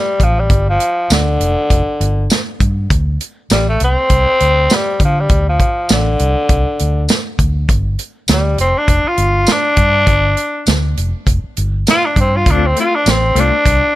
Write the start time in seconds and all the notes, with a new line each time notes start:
Already playing: G3
0.20 A1 F3, kick, closed hi-hat
0.39 G3
0.50 G1, kick, closed hi-hat
0.69 F3
0.80 closed hi-hat
1.10 D2 D3, snare, closed hi-hat, tambourine
1.40 F1, closed hi-hat
1.70 F1, kick, closed hi-hat
2.00 G1, closed hi-hat
2.30 snare, closed hi-hat, tambourine
2.60 G2, kick, closed hi-hat
2.90 D2, kick, closed hi-hat
3.21 closed hi-hat
3.50 A1 G3, snare, closed hi-hat, tambourine
3.69 A3
3.80 C2, closed hi-hat
3.84 C4
4.10 C2, kick, closed hi-hat
4.27 muted fingered electric bass stroke
4.40 D2, closed hi-hat
4.70 snare, closed hi-hat, tambourine
4.74 G3
5.00 D3, kick, closed hi-hat
5.05 F3
5.20 G3
5.29 D2, kick, closed hi-hat
5.49 F3
5.60 kick, closed hi-hat
5.89 A1 D3, snare, closed hi-hat, tambourine
6.19 C2, closed hi-hat
6.49 C2, kick, closed hi-hat
6.79 D2, closed hi-hat
7.09 snare, closed hi-hat, tambourine
7.39 D2, kick, closed hi-hat
7.69 G1, kick, closed hi-hat
7.99 closed hi-hat
8.28 D2, snare, closed hi-hat, tambourine
8.32 G3
8.58 F1 C4, closed hi-hat
8.78 D4
8.88 F1, kick, closed hi-hat
9.04 F4, muted fingered electric bass stroke
9.18 G1, closed hi-hat
9.47 snare, closed hi-hat, tambourine
9.52 D4
9.77 G2, kick, closed hi-hat
10.07 G1, kick, closed hi-hat
10.37 closed hi-hat
10.67 D2, snare, closed hi-hat, tambourine
10.97 F1, closed hi-hat
11.27 F1, kick, closed hi-hat
11.44 muted fingered electric bass stroke
11.57 G1, closed hi-hat
11.87 F4, snare, closed hi-hat, tambourine
12.06 D4
12.16 G2, kick, closed hi-hat
12.20 C4
12.37 F4
12.46 D2 A3 C4 F4, kick, closed hi-hat
12.51 D4
12.66 C4
12.76 A3 C4 F4, closed hi-hat
12.80 F4
12.92 D4, muted clean electric guitar stroke
13.06 A1, muted clean electric guitar stroke, snare, closed hi-hat, tambourine
13.10 C4
13.21 muted clean electric guitar stroke
13.35 C2 A3 C4 F4, closed hi-hat
13.40 D4
13.52 muted clean electric guitar stroke
13.66 C2, kick, closed hi-hat
13.81 muted fingered electric bass stroke, muted clean electric guitar stroke